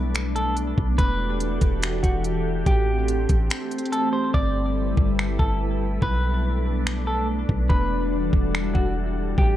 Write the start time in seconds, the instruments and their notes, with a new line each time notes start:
Already playing: 808-style bass B1, ambient pad A3 B3 D4, clean electric guitar B4
0.15 finger snap, closed hi-hat
0.36 clean electric guitar A4, closed hi-hat
0.57 closed hi-hat
0.78 808-style bass B1, kick
0.98 808-style bass E1, ambient pad E3 F#4 G4 A4, clean electric guitar B4, kick, closed hi-hat
1.40 closed hi-hat
1.61 808-style bass E1, kick, closed hi-hat
1.82 finger snap, closed hi-hat
2.03 808-style bass E1, clean electric guitar F#4, kick, closed hi-hat
2.24 closed hi-hat
2.66 808-style bass A1, ambient pad A3 C4, clean electric guitar G4, kick, closed hi-hat
3.08 closed hi-hat
3.29 808-style bass A1, kick, closed hi-hat
3.50 finger snap, closed hi-hat
3.71 closed hi-hat
3.78 closed hi-hat
3.86 closed hi-hat
3.92 clean electric guitar A4, closed hi-hat
4.13 clean electric guitar C5
4.34 808-style bass G1, ambient pad G3 E4 A4 B4, synth texture A3 E4 B4, clean electric guitar D5, kick
4.97 808-style bass G1, kick
5.19 finger snap
5.39 808-style bass G1, clean electric guitar A4, kick
6.02 808-style bass B1, ambient pad A3 B3 D4, synth texture D4, clean electric guitar B4, kick
6.87 finger snap
7.07 clean electric guitar A4
7.49 808-style bass B1, kick
7.69 808-style bass E1, ambient pad E3 G3 F#4 A4, synth texture G3 F#4 A4, clean electric guitar B4, kick
8.33 808-style bass E1, kick
8.55 finger snap
8.75 808-style bass E1, clean electric guitar F#4, kick
9.38 808-style bass A1, ambient pad A3 C4, clean electric guitar G4, kick